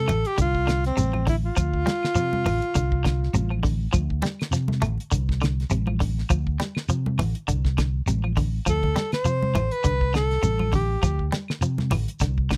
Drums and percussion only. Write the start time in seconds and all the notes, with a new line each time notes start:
0.08 closed hi-hat, high conga, low conga, claves, shekere
0.25 closed hi-hat, high conga
0.38 kick, closed hi-hat, high conga, shekere
0.55 kick
0.67 snare, closed hi-hat, claves, shekere
0.84 snare, closed hi-hat
0.97 closed hi-hat, high conga, shekere
1.13 high conga, claves
1.27 kick, open hi-hat, low conga, shekere
1.56 kick, closed hi-hat, high conga, claves, shekere
1.74 kick
1.86 snare, closed hi-hat, high conga, shekere
2.03 snare, claves
2.15 closed hi-hat, shekere
2.33 high conga
2.45 open hi-hat, high conga, low conga, claves, shekere
2.62 closed hi-hat, high conga
2.75 kick, closed hi-hat, high conga, shekere
2.92 kick
3.05 kick, snare, closed hi-hat, claves, shekere
3.23 snare
3.34 closed hi-hat, high conga, shekere
3.51 claves
3.63 kick, open hi-hat, low conga, shekere
3.93 kick, closed hi-hat, high conga, claves, shekere
4.10 kick
4.22 snare, closed hi-hat, high conga, shekere
4.39 snare, closed hi-hat, claves
4.52 snare, closed hi-hat, shekere
4.68 snare, high conga
4.81 closed hi-hat, high conga, low conga, claves, shekere
4.98 closed hi-hat, high conga
5.12 kick, closed hi-hat, high conga, shekere
5.29 kick, snare
5.41 snare, closed hi-hat, claves, shekere
5.60 snare, closed hi-hat
5.70 closed hi-hat, high conga, shekere
5.87 high conga, claves
6.00 kick, open hi-hat, low conga, shekere
6.19 snare
6.29 kick, closed hi-hat, claves, shekere
6.47 kick
6.60 snare, closed hi-hat, high conga, shekere
6.75 snare, claves
6.89 closed hi-hat, shekere
7.06 high conga
7.18 open hi-hat, high conga, low conga, claves, shekere
7.35 closed hi-hat, high conga
7.48 kick, closed hi-hat, high conga, shekere
7.65 kick, snare
7.78 kick, snare, closed hi-hat, claves, shekere
8.07 closed hi-hat, high conga, shekere
8.24 claves
8.36 kick, open hi-hat, low conga, shekere
8.66 kick, closed hi-hat, claves, shekere
8.83 kick, low conga
8.96 snare, closed hi-hat, high conga, shekere
9.12 snare, closed hi-hat, claves
9.25 closed hi-hat, shekere
9.42 high conga
9.55 closed hi-hat, high conga, low conga, claves, shekere
9.71 closed hi-hat, high conga
9.84 kick, closed hi-hat, high conga, shekere
10.01 kick
10.14 snare, closed hi-hat, claves, shekere
10.31 snare, closed hi-hat
10.43 closed hi-hat, high conga, shekere
10.59 high conga, claves
10.72 kick, open hi-hat, low conga, shekere
11.02 kick, snare, closed hi-hat, high conga, claves, shekere
11.19 kick
11.32 snare, closed hi-hat, high conga, shekere
11.48 snare, claves
11.62 closed hi-hat, shekere
11.78 snare, high conga
11.91 open hi-hat, high conga, low conga, claves, shekere
12.08 closed hi-hat, high conga
12.20 kick, snare, closed hi-hat, high conga, shekere
12.38 kick
12.50 kick, snare, closed hi-hat, claves, shekere